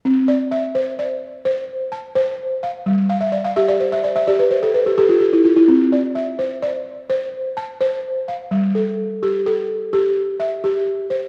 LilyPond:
\new Staff \with { instrumentName = "Balafon" } { \time 12/8 \key c \major \tempo 4. = 85 << { r8 d''8 e''4 d''4. r8 a''4. f''8~ | f''8 f''16 e''16 d''16 f''16 e''16 d''16 c''16 e''16 d''16 e''16 d''16 b'16 c''16 a'16 b'16 g'16 a'16 f'16 g'16 e'16 f'16 e'16~ | e'16 r16 d''8 e''4 d''4. r8 a''4. f''8~ | f''8 a'4. a'4. r8 e''4. c''8 | } \\ { c'4 r8 c''4 r8 c''4 r8 c''4 r8 | g4 r8 g'4 r8 g'4 r8 g'4 r8 | c'4 r8 c''4 r8 c''4 r8 c''4 r8 | g4 r8 g'4 r8 g'4 r8 g'4 r8 | } >> }